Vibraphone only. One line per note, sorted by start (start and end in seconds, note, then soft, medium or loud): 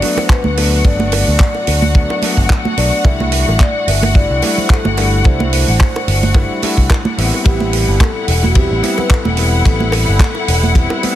0.00 0.19 D5 loud
0.18 0.30 C5 medium
0.30 0.87 B4 medium
0.85 1.11 D5 loud
1.13 2.18 D5 loud
2.78 3.06 D5 loud
3.05 3.62 E5 loud
3.60 3.88 D5 loud
3.88 4.16 E5 loud
4.15 4.55 D5 loud
4.58 4.71 C5 loud
4.70 5.27 A4 medium
5.25 5.51 C5 loud
5.53 6.59 C5 medium
7.46 7.97 G4 medium
8.44 8.56 F#4 medium
8.56 9.00 G4 loud
8.98 9.09 B4 loud
9.10 9.62 A4 loud
9.66 10.72 A4 loud